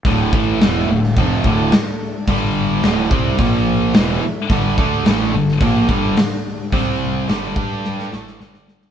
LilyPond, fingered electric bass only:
\new Staff \with { instrumentName = "Fingered electric bass" } { \clef bass \time 4/4 \key d \minor \tempo 4 = 108 d,,8 a,,8 e,,8 d,,8 f,,8 d,,8 r4 | g,,4 d,,8 c,8 bes,,4 e,,8 r8 | g,,8 d,8 a,,8 g,,8 bes,,8 g,,8 r4 | c,4 g,,8 g,4 a,,8 g,,4 | }